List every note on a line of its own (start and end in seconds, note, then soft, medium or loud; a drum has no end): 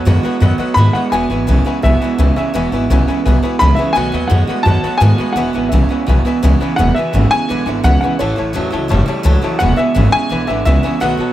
0.00 0.19 D#5 medium
0.05 0.21 F#2 loud
0.05 0.24 B2 medium
0.05 0.23 B2 medium
0.05 0.24 D#3 medium
0.05 0.23 G#3 loud
0.05 0.24 A3 medium
0.05 0.24 B3 medium
0.05 0.22 F#4 medium
0.05 0.18 B4 medium
0.05 0.18 D#5 medium
0.05 0.18 F#5 medium
0.23 0.41 B2 medium
0.23 0.41 G#3 medium
0.23 0.40 A3 medium
0.23 0.41 B3 medium
0.23 0.42 F#4 medium
0.23 0.35 B4 medium
0.23 0.35 D#5 medium
0.23 0.35 F#5 loud
0.23 muted upright bass stroke medium
0.40 0.56 F#2 loud
0.40 0.58 B2 medium
0.40 0.59 D#3 medium
0.40 0.58 F#3 medium
0.40 0.59 A3 medium
0.40 0.58 B3 medium
0.40 0.57 F#4 medium
0.40 0.52 B4 loud
0.40 0.53 D#5 loud
0.40 0.53 F#5 loud
0.58 0.76 B2 medium
0.58 0.76 F#3 medium
0.58 0.76 A3 soft
0.58 0.77 B3 medium
0.58 0.77 F#4 medium
0.58 0.70 B4 medium
0.58 0.70 D#5 medium
0.58 0.70 F#5 medium
0.58 muted upright bass stroke medium
0.74 0.92 G#2 medium
0.74 0.94 B2 medium
0.74 0.95 D#3 medium
0.74 0.95 A3 medium
0.74 0.95 B3 medium
0.74 0.93 F#4 medium
0.74 0.88 B4 medium
0.74 0.88 D#5 medium
0.74 0.88 F#5 medium
0.74 0.94 B5 loud
0.79 0.94 G#3 medium
0.93 1.11 B2 medium
0.93 1.11 G#3 medium
0.93 1.12 B3 soft
0.93 1.13 F#4 medium
0.93 1.06 B4 medium
0.93 1.06 D#5 medium
0.93 1.11 F#5 medium
0.93 1.06 F#5 medium
0.93 muted upright bass stroke medium
0.98 1.12 A3 soft
1.12 1.27 E1 loud
1.12 1.30 E2 medium
1.12 1.29 E2 medium
1.12 1.30 B2 medium
1.12 1.29 B2 loud
1.12 1.31 E3 medium
1.12 1.31 G#3 medium
1.12 1.30 B3 medium
1.12 1.29 E4 medium
1.12 1.23 B4 medium
1.12 1.23 E5 medium
1.12 1.62 G#5 medium
1.12 1.23 G#5 loud
1.30 1.45 G#1 medium
1.30 1.47 E2 medium
1.30 1.47 B2 medium
1.30 1.47 E3 soft
1.30 1.47 G#3 soft
1.30 1.48 B3 soft
1.30 1.47 E4 medium
1.30 1.41 B4 medium
1.30 1.41 E5 medium
1.30 1.41 G#5 medium
1.47 1.63 B1 medium
1.47 1.65 E2 medium
1.47 1.64 E2 medium
1.47 1.66 B2 medium
1.47 1.65 C#3 loud
1.47 1.66 E3 medium
1.47 1.65 G#3 medium
1.47 1.64 B3 medium
1.47 1.63 E4 medium
1.47 1.59 B4 medium
1.47 1.59 E5 medium
1.47 1.59 G#5 medium
1.65 1.82 E2 medium
1.65 1.82 C#3 medium
1.65 1.81 E3 soft
1.65 1.83 G#3 medium
1.65 1.84 B3 medium
1.65 1.83 E4 medium
1.65 1.77 B4 medium
1.65 1.77 E5 medium
1.65 1.77 G#5 loud
1.65 muted upright bass stroke medium
1.82 1.98 B1 medium
1.82 1.99 E2 medium
1.82 2.00 B2 loud
1.82 2.01 E3 medium
1.82 2.02 G#3 medium
1.82 2.01 B3 medium
1.82 2.00 E4 medium
1.82 1.94 B4 medium
1.82 2.35 E5 medium
1.82 1.95 E5 medium
1.82 1.95 G#5 loud
2.01 2.17 E2 medium
2.01 2.17 B2 medium
2.01 2.18 E3 soft
2.01 2.18 G#3 medium
2.01 2.19 B3 soft
2.01 2.19 E4 medium
2.01 2.12 B4 medium
2.01 2.12 E5 medium
2.01 2.12 G#5 medium
2.01 muted upright bass stroke medium
2.18 2.34 C#2 medium
2.18 2.35 E2 medium
2.18 2.37 E2 medium
2.18 2.36 B2 medium
2.18 2.35 C#3 medium
2.18 2.37 E3 medium
2.18 2.37 G#3 medium
2.18 2.36 B3 medium
2.18 2.35 E4 medium
2.18 2.30 B4 medium
2.18 2.30 E5 medium
2.18 2.30 G#5 medium
2.36 2.53 E2 medium
2.36 2.53 C#3 medium
2.36 2.53 E3 soft
2.36 2.54 G#3 soft
2.36 2.54 B3 medium
2.36 2.54 E4 medium
2.36 2.48 B4 medium
2.36 3.03 E5 medium
2.36 2.48 E5 medium
2.36 2.48 G#5 medium
2.36 muted upright bass stroke medium
2.54 2.69 E1 loud
2.54 2.72 E2 medium
2.54 2.71 E2 medium
2.54 2.72 B2 medium
2.54 2.71 B2 medium
2.54 2.72 E3 medium
2.54 2.73 G#3 medium
2.54 2.72 B3 medium
2.54 2.71 E4 medium
2.54 2.65 B4 medium
2.54 2.66 E5 medium
2.54 2.66 G#5 loud
2.72 2.87 G#1 loud
2.72 2.88 E2 medium
2.72 2.88 B2 medium
2.72 2.90 E3 soft
2.72 2.91 G#3 soft
2.72 2.90 B3 medium
2.72 2.90 E4 medium
2.72 2.83 B4 medium
2.72 2.83 E5 medium
2.72 2.83 G#5 medium
2.89 3.05 B1 medium
2.89 3.05 E2 medium
2.89 3.08 E2 medium
2.89 3.08 B2 medium
2.89 3.06 C#3 loud
2.89 3.08 E3 medium
2.89 3.09 G#3 medium
2.89 3.08 B3 medium
2.89 3.07 E4 medium
2.89 3.01 B4 medium
2.89 3.01 E5 medium
2.89 3.01 G#5 medium
3.08 3.24 E2 medium
3.08 3.24 C#3 medium
3.08 3.24 E3 soft
3.08 3.25 G#3 soft
3.08 3.26 B3 soft
3.08 3.26 E4 medium
3.08 3.18 B4 medium
3.08 3.18 E5 medium
3.08 3.19 G#5 medium
3.08 muted upright bass stroke medium
3.25 3.40 B1 medium
3.25 3.41 E2 medium
3.25 3.42 B2 loud
3.25 3.43 E3 medium
3.25 3.44 G#3 medium
3.25 3.42 B3 medium
3.25 3.41 E4 medium
3.25 3.36 B4 loud
3.25 3.36 E5 loud
3.25 3.36 G#5 loud
3.43 3.59 E2 medium
3.43 3.59 B2 medium
3.43 3.60 E3 soft
3.43 3.60 G#3 medium
3.43 3.60 B3 medium
3.43 3.60 E4 medium
3.43 3.54 B4 medium
3.43 3.54 E5 medium
3.43 3.54 G#5 loud
3.43 muted upright bass stroke medium
3.59 3.76 C#2 medium
3.59 3.78 E2 medium
3.59 3.77 E2 medium
3.59 3.78 B2 medium
3.59 3.77 C#3 medium
3.59 3.78 E3 medium
3.59 3.77 G#3 medium
3.59 3.76 B3 medium
3.59 3.75 E4 medium
3.59 3.71 B4 medium
3.59 3.71 E5 medium
3.59 3.71 G#5 medium
3.59 3.78 B5 loud
3.75 3.95 E3 soft
3.75 3.95 G#3 medium
3.75 3.95 B3 medium
3.75 3.95 E4 medium
3.75 3.89 B4 medium
3.75 3.95 E5 medium
3.79 3.95 E2 medium
3.79 3.95 C#3 medium
3.79 3.89 E5 medium
3.79 3.90 G#5 medium
3.93 4.11 B1 loud
3.93 4.13 B2 medium
3.93 4.12 B2 medium
3.93 4.13 D#3 medium
3.93 4.12 F#3 medium
3.93 4.13 A3 medium
3.93 4.13 B3 medium
3.93 4.11 F#4 medium
3.93 4.31 G#5 loud
3.97 4.07 B4 loud
3.97 4.07 D#5 medium
3.97 4.07 F#5 loud
4.12 4.28 D#2 medium
4.12 4.29 B2 medium
4.12 4.29 F#3 medium
4.12 4.29 A3 soft
4.12 4.30 B3 soft
4.12 4.30 F#4 medium
4.12 4.24 B4 medium
4.12 4.24 D#5 medium
4.12 4.25 F#5 medium
4.28 4.46 F#2 loud
4.28 4.48 B2 medium
4.28 4.47 B2 medium
4.28 4.48 D#3 medium
4.28 4.47 G#3 medium
4.28 4.48 A3 medium
4.28 4.48 B3 medium
4.28 4.46 F#4 medium
4.28 4.42 B4 medium
4.28 4.62 F#5 medium
4.32 4.42 D#5 medium
4.32 4.42 F#5 medium
4.47 4.65 B2 medium
4.47 4.65 G#3 medium
4.47 4.65 A3 soft
4.47 4.66 B3 soft
4.47 4.66 F#4 soft
4.47 4.60 B4 medium
4.47 4.60 D#5 medium
4.47 4.60 F#5 medium
4.47 muted upright bass stroke medium
4.63 4.81 F#2 loud
4.63 4.82 B2 medium
4.63 4.83 D#3 medium
4.63 4.82 F#3 medium
4.63 4.84 A3 medium
4.63 4.84 B3 medium
4.63 5.01 A5 loud
4.67 4.83 F#4 medium
4.67 4.78 B4 loud
4.67 4.78 D#5 medium
4.67 4.78 F#5 loud
4.83 5.00 B2 medium
4.83 5.00 F#3 medium
4.83 5.00 A3 soft
4.83 5.01 B3 medium
4.83 5.01 F#4 medium
4.83 4.94 B4 medium
4.83 4.95 D#5 medium
4.83 4.95 F#5 medium
4.83 muted upright bass stroke medium
4.98 5.16 G#2 medium
4.98 5.19 B2 medium
4.98 5.17 B2 medium
4.98 5.19 D#3 medium
4.98 5.17 G#3 medium
4.98 5.19 A3 medium
4.98 5.36 G#5 loud
5.02 5.18 B3 medium
5.02 5.17 F#4 medium
5.02 5.13 B4 medium
5.02 5.13 D#5 medium
5.02 5.13 F#5 medium
5.18 5.35 B2 medium
5.18 5.35 G#3 medium
5.18 5.36 A3 soft
5.18 5.36 B3 medium
5.18 5.37 F#4 medium
5.18 5.30 B4 medium
5.18 5.30 D#5 medium
5.18 5.31 F#5 medium
5.18 muted upright bass stroke medium
5.33 5.51 E1 loud
5.33 5.54 E2 medium
5.33 5.53 E2 medium
5.33 5.54 B2 medium
5.33 5.54 E3 medium
5.33 5.68 F#5 medium
5.37 5.53 B2 loud
5.37 5.54 G#3 medium
5.37 5.53 B3 medium
5.37 5.52 E4 medium
5.37 5.48 B4 loud
5.37 5.48 E5 medium
5.37 5.48 G#5 loud
5.53 5.69 G#1 medium
5.53 5.70 E2 medium
5.53 5.71 B2 medium
5.53 5.71 E3 soft
5.53 5.72 G#3 soft
5.53 5.71 B3 medium
5.53 5.72 E4 medium
5.53 5.66 B4 medium
5.53 5.66 E5 medium
5.53 5.66 G#5 medium
5.69 5.87 B1 medium
5.69 5.90 E2 medium
5.69 5.88 E2 medium
5.69 5.90 B2 medium
5.69 5.88 C#3 loud
5.69 5.90 E3 medium
5.69 5.89 G#3 medium
5.69 5.89 B3 medium
5.69 5.83 B4 medium
5.69 6.55 E5 medium
5.69 5.83 E5 medium
5.73 5.88 E4 medium
5.73 5.84 G#5 medium
5.89 6.06 E2 medium
5.89 6.06 C#3 medium
5.89 6.05 E3 soft
5.89 6.07 G#3 soft
5.89 6.08 B3 soft
5.89 6.07 E4 medium
5.89 6.01 B4 medium
5.89 6.01 E5 medium
5.89 6.02 G#5 medium
5.89 muted upright bass stroke medium
6.07 6.23 B1 medium
6.07 6.23 E2 medium
6.07 6.23 B2 medium
6.07 6.25 E3 medium
6.07 6.26 G#3 medium
6.07 6.25 B3 medium
6.07 6.24 E4 medium
6.07 6.19 B4 medium
6.07 6.19 E5 medium
6.07 6.19 G#5 loud
6.25 6.41 E2 medium
6.25 6.41 B2 medium
6.25 6.42 E3 medium
6.25 6.43 G#3 medium
6.25 6.43 B3 medium
6.25 6.43 E4 medium
6.25 6.36 B4 medium
6.25 6.37 E5 medium
6.25 6.37 G#5 loud
6.25 muted upright bass stroke medium
6.43 6.58 C#2 medium
6.43 6.61 E2 loud
6.43 6.59 E2 medium
6.43 6.61 B2 medium
6.43 6.59 C#3 loud
6.43 6.61 E3 loud
6.43 6.61 G#3 loud
6.43 6.60 B3 loud
6.43 6.59 E4 loud
6.43 6.54 B4 medium
6.43 6.54 E5 medium
6.43 6.54 G#5 loud
6.60 6.77 E2 medium
6.60 6.77 C#3 medium
6.60 6.78 E3 soft
6.60 6.78 G#3 medium
6.60 6.79 B3 medium
6.60 6.78 E4 medium
6.60 6.71 B4 medium
6.60 6.72 E5 medium
6.60 6.72 G#5 loud
6.60 muted upright bass stroke medium
6.76 6.93 E1 loud
6.76 6.96 E2 medium
6.76 6.94 E2 medium
6.76 6.94 B2 medium
6.76 6.96 B2 medium
6.76 6.96 E3 medium
6.76 6.97 G#3 medium
6.76 6.96 B3 medium
6.76 6.95 E4 medium
6.76 6.90 B4 loud
6.76 6.90 E5 medium
6.76 6.96 F#5 loud
6.76 6.90 G#5 loud
6.95 7.12 E2 medium
6.95 7.12 B2 medium
6.95 7.14 G#3 soft
6.95 7.13 B3 soft
6.95 7.14 E4 medium
6.95 7.07 B4 medium
6.95 7.32 E5 medium
6.95 7.07 E5 medium
6.95 7.08 G#5 medium
6.95 muted upright bass stroke medium
6.99 7.13 E3 soft
7.13 7.28 G#1 medium
7.13 7.29 E2 medium
7.13 7.31 E2 medium
7.13 7.31 B2 medium
7.13 7.30 C#3 medium
7.13 7.32 E3 medium
7.13 7.32 G#3 medium
7.13 7.31 B3 medium
7.13 7.30 E4 medium
7.13 7.25 B4 medium
7.13 7.25 E5 medium
7.13 7.25 G#5 medium
7.31 7.47 E2 medium
7.31 7.47 C#3 medium
7.31 7.48 E3 soft
7.31 7.49 G#3 soft
7.31 7.49 B3 medium
7.31 7.49 E4 medium
7.31 7.42 B4 medium
7.31 7.43 E5 medium
7.31 7.64 G#5 loud
7.31 7.43 G#5 medium
7.31 muted upright bass stroke medium
7.49 7.64 B1 medium
7.49 7.65 E2 medium
7.49 7.65 D3 medium
7.49 7.67 E3 medium
7.49 7.67 G#3 medium
7.49 7.66 B3 medium
7.49 7.65 E4 medium
7.49 7.60 B4 medium
7.49 7.60 E5 medium
7.49 7.61 G#5 loud
7.66 7.81 G#1 loud
7.66 7.82 E2 medium
7.66 7.83 D3 medium
7.66 7.83 E3 soft
7.66 7.84 G#3 soft
7.66 7.84 B3 medium
7.66 7.84 E4 medium
7.66 7.78 B4 medium
7.66 7.78 E5 medium
7.66 7.79 G#5 medium
7.84 7.98 C#2 medium
7.84 8.02 E2 medium
7.84 8.00 E2 medium
7.84 8.02 B2 medium
7.84 8.00 C#3 loud
7.84 8.02 E3 medium
7.84 8.02 G#3 medium
7.84 8.02 B3 medium
7.84 8.00 E4 medium
7.84 7.96 B4 medium
7.84 7.96 E5 medium
7.84 7.99 F#5 loud
7.84 7.96 B5 medium
8.01 8.18 E2 medium
8.01 8.18 C#3 medium
8.01 8.18 E3 medium
8.01 8.20 G#3 soft
8.01 8.20 B3 soft
8.01 8.19 E4 medium
8.01 8.13 B4 medium
8.01 8.13 E5 medium
8.01 8.20 F#5 medium
8.01 8.14 G#5 medium
8.01 muted upright bass stroke medium
8.19 8.34 A1 loud
8.19 8.37 A2 medium
8.19 8.36 A2 medium
8.19 8.37 E3 medium
8.19 8.36 E3 loud
8.19 8.37 A3 medium
8.19 8.36 C#4 medium
8.19 8.35 E4 medium
8.19 8.52 C#5 medium
8.19 8.30 C#5 loud
8.19 8.31 E5 medium
8.19 8.31 A5 loud
8.36 8.52 A1 medium
8.36 8.53 A2 medium
8.36 8.54 E3 medium
8.36 8.53 A3 soft
8.36 8.54 C#4 soft
8.36 8.54 E4 soft
8.36 8.48 C#5 medium
8.36 8.48 E5 medium
8.36 8.49 A5 medium
8.53 8.70 E2 medium
8.53 8.72 A2 medium
8.53 8.70 A2 medium
8.53 8.72 E3 medium
8.53 8.71 F#3 loud
8.53 8.72 A3 medium
8.53 8.71 C#4 medium
8.53 8.69 E4 medium
8.53 8.65 C#5 medium
8.53 8.66 E5 medium
8.53 8.66 A5 medium
8.71 8.87 C#2 medium
8.71 8.88 A2 medium
8.71 8.89 F#3 medium
8.71 8.88 A3 medium
8.71 8.89 C#4 medium
8.71 8.89 E4 medium
8.71 8.83 C#5 medium
8.71 8.83 E5 medium
8.71 8.84 A5 loud
8.88 9.05 F#1 loud
8.88 9.06 A2 medium
8.88 9.07 E3 medium
8.88 9.06 G3 loud
8.88 9.07 A3 medium
8.88 9.07 C#4 medium
8.88 9.04 E4 medium
8.88 9.01 C#5 loud
8.88 9.01 E5 loud
8.88 9.01 A5 loud
9.06 9.24 A2 medium
9.06 9.24 G3 medium
9.06 9.23 A3 medium
9.06 9.24 C#4 medium
9.06 9.24 E4 medium
9.06 9.18 C#5 medium
9.06 9.19 E5 medium
9.06 9.19 A5 loud
9.06 muted upright bass stroke medium
9.23 9.39 C#2 medium
9.23 9.42 A2 loud
9.23 9.42 A2 medium
9.23 9.42 E3 loud
9.23 9.42 F#3 loud
9.23 9.43 A3 loud
9.23 9.41 C#4 loud
9.23 9.40 E4 loud
9.23 9.36 C#5 medium
9.23 9.36 E5 medium
9.23 9.36 A5 loud
9.42 9.59 A2 medium
9.42 9.59 F#3 medium
9.42 9.60 A3 soft
9.42 9.60 C#4 medium
9.42 9.60 E4 medium
9.42 9.54 C#5 medium
9.42 9.54 E5 medium
9.42 9.54 A5 loud
9.59 9.76 E1 medium
9.59 9.77 E2 medium
9.59 9.78 B2 medium
9.59 9.77 B2 medium
9.59 9.78 E3 medium
9.59 9.77 G#3 medium
9.59 9.76 B3 medium
9.59 9.75 E4 medium
9.59 9.71 B4 loud
9.59 9.72 E5 medium
9.59 9.78 F#5 loud
9.59 9.72 G#5 loud
9.76 9.94 E2 medium
9.76 9.95 B2 medium
9.76 9.94 E3 soft
9.76 9.95 G#3 soft
9.76 9.95 B3 medium
9.76 9.95 E4 medium
9.76 9.89 B4 medium
9.76 10.10 E5 medium
9.76 9.89 E5 medium
9.76 9.89 G#5 medium
9.76 muted upright bass stroke medium
9.94 10.10 G#1 medium
9.94 10.13 E2 medium
9.94 10.12 E2 medium
9.94 10.13 B2 medium
9.94 10.12 C#3 loud
9.94 10.13 E3 medium
9.94 10.12 G#3 medium
9.94 10.11 B3 medium
9.94 10.10 E4 medium
9.94 10.06 B4 medium
9.94 10.07 E5 medium
9.94 10.07 G#5 medium
10.11 10.30 E2 medium
10.11 10.30 C#3 medium
10.11 10.28 E3 soft
10.11 10.29 G#3 soft
10.11 10.30 B3 soft
10.11 10.30 E4 medium
10.11 10.24 B4 medium
10.11 10.25 E5 medium
10.11 10.46 G#5 loud
10.11 10.25 G#5 medium
10.29 10.45 B1 loud
10.29 10.47 E2 medium
10.29 10.47 D3 medium
10.29 10.48 E3 medium
10.29 10.48 G#3 medium
10.29 10.47 B3 medium
10.29 10.46 E4 medium
10.29 10.42 B4 loud
10.29 10.42 E5 medium
10.29 10.42 G#5 loud
10.47 10.63 G#1 medium
10.47 10.65 E2 medium
10.47 10.65 D3 medium
10.47 10.64 E3 soft
10.47 10.65 G#3 soft
10.47 10.66 B3 medium
10.47 10.66 E4 medium
10.47 10.60 B4 medium
10.47 10.64 E5 medium
10.47 10.60 E5 medium
10.47 10.60 G#5 medium
10.65 10.80 C#2 medium
10.65 10.84 E2 medium
10.65 10.82 E2 medium
10.65 10.84 B2 medium
10.65 10.83 C#3 medium
10.65 10.84 E3 medium
10.65 10.84 G#3 medium
10.65 10.83 B3 medium
10.65 10.82 E4 medium
10.65 10.78 B4 medium
10.65 11.02 E5 loud
10.65 10.78 E5 medium
10.65 10.78 G#5 medium
10.83 11.00 E2 medium
10.83 11.00 C#3 medium
10.83 11.00 E3 soft
10.83 11.01 G#3 soft
10.83 11.00 B3 medium
10.83 11.01 E4 medium
10.83 10.94 B4 medium
10.83 10.94 E5 medium
10.83 10.95 G#5 medium
11.00 11.16 B1 loud
11.00 11.19 B2 medium
11.00 11.18 B2 loud
11.00 11.19 D#3 medium
11.00 11.18 F#3 medium
11.00 11.19 A3 medium
11.00 11.17 B3 medium
11.00 11.16 F#4 medium
11.00 11.13 B4 loud
11.00 11.13 D#5 medium
11.00 11.33 F#5 medium
11.00 11.13 F#5 loud
11.17 11.33 B1 medium
11.17 11.33 B2 medium
11.17 11.33 F#3 medium
11.17 11.33 A3 soft
11.17 11.33 B3 medium
11.17 11.33 F#4 medium
11.17 11.30 B4 medium
11.17 11.30 D#5 medium
11.17 11.30 A5 medium